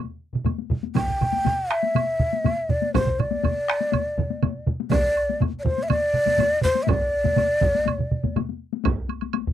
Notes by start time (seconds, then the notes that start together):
0.33 taiko low-mid, taiko mid
0.45 taiko low-mid, taiko mid, taiko high, high woodblock
0.58 taiko high
0.70 taiko low-mid, taiko mid
0.83 taiko high
0.95 G5, taiko, taiko low-mid, taiko mid, taiko high, high woodblock
1.08 taiko low-mid, taiko mid
1.21 taiko low-mid, taiko mid, high woodblock
1.32 taiko high
1.45 taiko low-mid, taiko mid, taiko high, high woodblock
1.71 E5, taiko rim
1.83 taiko high
1.95 taiko low-mid, taiko mid, taiko high, high woodblock
2.20 taiko low-mid, taiko mid
2.33 taiko high
2.44 taiko low-mid, taiko mid, taiko high, high woodblock
2.70 D5, taiko low-mid, taiko mid
2.82 taiko high
2.94 C5, taiko, taiko low-mid, taiko mid, taiko high, high woodblock
3.07 taiko low-mid, taiko mid
3.19 D5, taiko low-mid, taiko mid, high woodblock
3.31 taiko high
3.43 taiko low-mid, taiko mid, taiko high, high woodblock
3.68 taiko rim
3.81 taiko high
3.92 taiko low-mid, taiko mid, taiko high, high woodblock
4.18 taiko low-mid, taiko mid
4.30 taiko high
4.43 taiko low-mid, taiko mid, taiko high, high woodblock
4.66 taiko low-mid, taiko mid
4.80 taiko high
4.90 D5, taiko, taiko low-mid, taiko mid, taiko high, high woodblock
5.17 high woodblock
5.29 taiko high
5.40 taiko low-mid, taiko mid, taiko high, high woodblock
5.59 D5
5.63 C5, taiko low-mid, taiko mid
5.78 taiko high
5.83 E5
5.89 D5, taiko low-mid, taiko mid, taiko high, high woodblock
6.13 taiko low-mid, taiko mid
6.26 taiko low-mid, taiko mid, taiko high
6.38 taiko low-mid, taiko mid, taiko high, high woodblock
6.61 C5, taiko low-mid, taiko mid
6.75 taiko high
6.83 E5, taiko high
6.87 D5, taiko, taiko low-mid, taiko mid, high woodblock
7.24 taiko low-mid, taiko mid, taiko high
7.36 taiko low-mid, taiko mid, taiko high, high woodblock
7.61 taiko, taiko low-mid, taiko mid
7.75 taiko high
7.86 taiko low-mid, taiko mid, taiko high, high woodblock
7.99 taiko low-mid, taiko mid
8.11 taiko low-mid, taiko mid
8.23 taiko low-mid, taiko mid, taiko high
8.36 taiko low-mid, taiko mid, taiko high, high woodblock
8.49 taiko high
8.73 taiko high
8.84 taiko, taiko low-mid, taiko high, high woodblock
9.09 taiko high, high woodblock
9.21 taiko high, high woodblock
9.33 taiko high, high woodblock
9.47 taiko low-mid